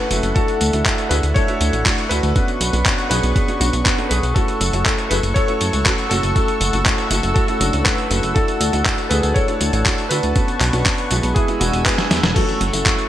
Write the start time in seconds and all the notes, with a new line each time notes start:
Already playing: F#4 A4 B4 E5 F#5 C#6
0.11 F#1 A3 C#4 E4 F#4, closed hi-hat, tambourine
0.23 F#1, closed hi-hat, tambourine
0.34 A3 D4 E4 F#4 A4 E5, kick, closed hi-hat, tambourine
0.48 closed hi-hat, tambourine
0.61 D2, closed hi-hat, tambourine
0.73 D2 A3 D4 E4 F#4, closed hi-hat, tambourine
0.86 kick, clap, closed hi-hat, tambourine
0.98 closed hi-hat, tambourine
1.09 D2 A3 D4 E4 F#4 G#4 B4, closed hi-hat, tambourine
1.23 D2, closed hi-hat, tambourine
1.34 A4 C#5, kick, closed hi-hat, tambourine
1.48 A3 D4 E4 F#4, closed hi-hat, tambourine
1.61 D2, closed hi-hat, tambourine
1.73 A1, closed hi-hat, tambourine
1.86 A3 D4 E4 F#4, kick, clap, closed hi-hat, tambourine
1.98 closed hi-hat, tambourine
2.09 D2 A3 D4 E4 F#4 B4, closed hi-hat, tambourine
2.23 D2, closed hi-hat, tambourine
2.36 B3 C#4 D4 F#4 B4 C#6, kick, closed hi-hat, tambourine
2.48 closed hi-hat, tambourine
2.61 B1, closed hi-hat, tambourine
2.73 B1 B3 C#4 D4 F#4, closed hi-hat, tambourine
2.86 kick, clap, closed hi-hat, tambourine
2.98 closed hi-hat, tambourine
3.09 B1 B3 C#4 D4 F#4 G#4 B4, closed hi-hat, tambourine
3.23 B1, closed hi-hat, tambourine
3.36 kick, closed hi-hat, tambourine
3.48 B3 C#4 D4 F#4, closed hi-hat, tambourine
3.60 B1 B3 C#4 D4 F#4, closed hi-hat, tambourine
3.73 B1 B3 C#4 D4 F#4, closed hi-hat, tambourine
3.84 F#4 B4, kick, clap, closed hi-hat, tambourine
3.98 B3 C#4 D4 A4, closed hi-hat, tambourine
4.09 B1 G#4 B4, closed hi-hat, tambourine
4.23 B1, closed hi-hat, tambourine
4.34 A3 C#4 E4 F#4 A4 F#5 C#6 E6, kick, closed hi-hat, tambourine
4.48 closed hi-hat, tambourine
4.61 F#1, closed hi-hat, tambourine
4.73 F#1 A3 C#4 E4 F#4, closed hi-hat, tambourine
4.84 F#4 A4, kick, clap, closed hi-hat, tambourine
4.98 closed hi-hat, tambourine
5.10 F#1 A3 C#4 E4 F#4 G#4 B4, closed hi-hat, tambourine
5.23 F#1, closed hi-hat, tambourine
5.34 A4 C#5, kick, closed hi-hat, tambourine
5.48 A3 C#4 E4 F#4, closed hi-hat, tambourine
5.61 F#1, closed hi-hat, tambourine
5.73 C#2, closed hi-hat, tambourine
5.84 A3 C#4 E4 F#4 B4, kick, clap, closed hi-hat, tambourine
5.98 closed hi-hat, tambourine
6.09 F#1 A3 C#4 E4 F#4 A4, closed hi-hat, tambourine
6.23 F#1, closed hi-hat, tambourine
6.36 A3 C#4 E4 F#4, kick, closed hi-hat, tambourine
6.48 closed hi-hat, tambourine
6.61 F#1, closed hi-hat, tambourine
6.73 F#1 A3 C#4 E4 F#4, closed hi-hat, tambourine
6.86 kick, clap, closed hi-hat, tambourine
6.98 closed hi-hat, tambourine
7.11 F#1 A3 C#4 E4 F#4, closed hi-hat, tambourine
7.23 F#1, closed hi-hat, tambourine
7.34 F#4 A4, kick, closed hi-hat, tambourine
7.48 A3 C#4 E4 F#4, closed hi-hat, tambourine
7.59 F#1 D4 F#4, closed hi-hat, tambourine
7.73 C#2, closed hi-hat, tambourine
7.84 A3 C#4 E4 F#4 B4, kick, clap, closed hi-hat, tambourine
7.98 closed hi-hat, tambourine
8.11 F#1 A3 C#4 E4 F#4, closed hi-hat, tambourine
8.23 F#1, closed hi-hat, tambourine
8.34 A3 D4 E4 F#4 A4 A5, kick, closed hi-hat, tambourine
8.48 closed hi-hat, tambourine
8.61 D2, closed hi-hat, tambourine
8.73 D2 A3 D4 E4 F#4, closed hi-hat, tambourine
8.86 kick, clap, closed hi-hat, tambourine
8.98 closed hi-hat, tambourine
9.09 D2 A3 D4 E4 F#4 G#4 B4, closed hi-hat, tambourine
9.23 D2, closed hi-hat, tambourine
9.34 A4 C#5, kick, closed hi-hat, tambourine
9.48 A3 D4 E4 F#4, closed hi-hat, tambourine
9.61 D2, closed hi-hat, tambourine
9.73 A1, closed hi-hat, tambourine
9.86 A3 D4 E4 F#4, kick, clap, closed hi-hat, tambourine
9.98 closed hi-hat, tambourine
10.09 D2 A3 D4 E4 F#4 B4, closed hi-hat, tambourine
10.23 D2, closed hi-hat, tambourine
10.36 B3 C#4 D4 F#4 B4 C#6, kick, closed hi-hat, tambourine
10.48 closed hi-hat, tambourine
10.61 B1, clap, closed hi-hat, tambourine
10.73 B1 B3 C#4 D4 F#4, closed hi-hat, tambourine
10.86 kick, clap, closed hi-hat, tambourine
10.98 closed hi-hat, tambourine
11.11 B1 G#3 B3 E4 F#4, closed hi-hat, tambourine
11.23 B1, closed hi-hat, tambourine
11.35 E4 G#4 G#5 E6, kick, closed hi-hat, tambourine
11.48 G#3 B3 E4 F#4, closed hi-hat, tambourine
11.60 E1 G#3 B3 D4 E4 F#4, closed hi-hat, tambourine
11.73 E1 G#3 B3 E4 F#4, closed hi-hat, tambourine
11.85 G#4 B4, kick, clap, closed hi-hat, tambourine
11.98 G#3 B3 E4 B4, snare, closed hi-hat, tambourine
12.11 E2, snare, closed hi-hat, tambourine
12.23 E1, snare, closed hi-hat, tambourine
12.34 A3 C#4 E4 F#4 A4 F#5 C#6 E6, kick, closed hi-hat, crash, tambourine
12.48 closed hi-hat, tambourine
12.61 F#1, closed hi-hat
12.73 F#1 A3 C#4 E4 F#4, closed hi-hat, tambourine
12.86 kick, clap, closed hi-hat, tambourine
12.98 closed hi-hat, tambourine